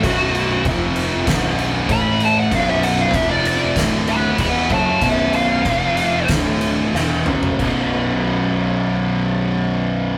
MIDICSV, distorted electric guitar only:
0, 0, Header, 1, 2, 480
1, 0, Start_track
1, 0, Tempo, 624350
1, 28, Time_signature, 4, 2, 24, 8
1, 4349, Tempo, 653595
1, 7669, End_track
2, 0, Start_track
2, 0, Title_t, "Distorted electric guitar"
2, 0, Program_c, 0, 30
2, 18, Note_on_c, 0, 35, 75
2, 25, Note_on_c, 0, 42, 92
2, 25, Note_on_c, 0, 47, 92
2, 492, Note_off_c, 0, 35, 0
2, 496, Note_off_c, 0, 42, 0
2, 496, Note_off_c, 0, 47, 0
2, 499, Note_on_c, 0, 48, 88
2, 500, Note_on_c, 0, 41, 101
2, 500, Note_on_c, 0, 53, 93
2, 971, Note_off_c, 0, 48, 0
2, 972, Note_off_c, 0, 41, 0
2, 972, Note_off_c, 0, 53, 0
2, 977, Note_on_c, 0, 35, 77
2, 977, Note_on_c, 0, 42, 85
2, 982, Note_on_c, 0, 47, 97
2, 1445, Note_off_c, 0, 35, 0
2, 1448, Note_on_c, 0, 45, 94
2, 1449, Note_off_c, 0, 42, 0
2, 1451, Note_off_c, 0, 47, 0
2, 1452, Note_on_c, 0, 52, 96
2, 1454, Note_on_c, 0, 57, 103
2, 1923, Note_off_c, 0, 45, 0
2, 1925, Note_off_c, 0, 52, 0
2, 1927, Note_off_c, 0, 57, 0
2, 1931, Note_on_c, 0, 35, 85
2, 1932, Note_on_c, 0, 47, 100
2, 1935, Note_on_c, 0, 42, 92
2, 2404, Note_off_c, 0, 35, 0
2, 2405, Note_off_c, 0, 47, 0
2, 2406, Note_off_c, 0, 42, 0
2, 2413, Note_on_c, 0, 41, 99
2, 2419, Note_on_c, 0, 48, 99
2, 2420, Note_on_c, 0, 53, 111
2, 2885, Note_off_c, 0, 41, 0
2, 2888, Note_off_c, 0, 48, 0
2, 2889, Note_off_c, 0, 53, 0
2, 2891, Note_on_c, 0, 38, 76
2, 2896, Note_on_c, 0, 50, 91
2, 2897, Note_on_c, 0, 45, 89
2, 3366, Note_off_c, 0, 38, 0
2, 3369, Note_off_c, 0, 45, 0
2, 3369, Note_off_c, 0, 50, 0
2, 3372, Note_on_c, 0, 40, 88
2, 3377, Note_on_c, 0, 47, 90
2, 3379, Note_on_c, 0, 52, 100
2, 3608, Note_off_c, 0, 40, 0
2, 3611, Note_off_c, 0, 47, 0
2, 3611, Note_off_c, 0, 52, 0
2, 3619, Note_on_c, 0, 42, 86
2, 3620, Note_on_c, 0, 49, 79
2, 3626, Note_on_c, 0, 54, 94
2, 3853, Note_off_c, 0, 42, 0
2, 3854, Note_off_c, 0, 49, 0
2, 3857, Note_off_c, 0, 54, 0
2, 3861, Note_on_c, 0, 35, 86
2, 3863, Note_on_c, 0, 42, 84
2, 3864, Note_on_c, 0, 47, 96
2, 4341, Note_off_c, 0, 35, 0
2, 4342, Note_off_c, 0, 42, 0
2, 4343, Note_off_c, 0, 47, 0
2, 4347, Note_on_c, 0, 41, 98
2, 4353, Note_on_c, 0, 48, 92
2, 4356, Note_on_c, 0, 53, 92
2, 4811, Note_off_c, 0, 41, 0
2, 4814, Note_off_c, 0, 48, 0
2, 4816, Note_off_c, 0, 53, 0
2, 4822, Note_on_c, 0, 45, 74
2, 4824, Note_on_c, 0, 38, 73
2, 4828, Note_on_c, 0, 50, 81
2, 5289, Note_off_c, 0, 45, 0
2, 5290, Note_off_c, 0, 38, 0
2, 5292, Note_off_c, 0, 50, 0
2, 5294, Note_on_c, 0, 40, 88
2, 5295, Note_on_c, 0, 47, 86
2, 5298, Note_on_c, 0, 52, 104
2, 5526, Note_off_c, 0, 40, 0
2, 5527, Note_off_c, 0, 47, 0
2, 5529, Note_off_c, 0, 52, 0
2, 5533, Note_on_c, 0, 42, 90
2, 5536, Note_on_c, 0, 49, 90
2, 5539, Note_on_c, 0, 54, 88
2, 5766, Note_off_c, 0, 42, 0
2, 5769, Note_off_c, 0, 49, 0
2, 5769, Note_on_c, 0, 35, 88
2, 5770, Note_off_c, 0, 54, 0
2, 5783, Note_on_c, 0, 42, 77
2, 5797, Note_on_c, 0, 47, 96
2, 7669, Note_off_c, 0, 35, 0
2, 7669, Note_off_c, 0, 42, 0
2, 7669, Note_off_c, 0, 47, 0
2, 7669, End_track
0, 0, End_of_file